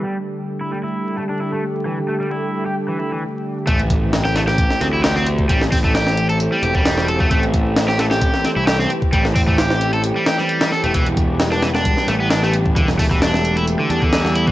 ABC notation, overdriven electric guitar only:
X:1
M:4/4
L:1/16
Q:"Swing 16ths" 1/4=132
K:Am
V:1 name="Overdriven electric guitar"
G, z4 E G, E3 A, D E A, z2 | E, z A, G, E3 G z E, E E, z4 | A, z4 G A, G3 C E G C z2 | G, z C A, G3 A z G, G G,3 A A, |
A, z4 G A, G3 C E G C z2 | G, z C A, G3 A z G, G G,3 A A, | E, z4 D E, D3 A, B, D A, z2 | D, z A, E, D3 E z D, D D,3 E E, |]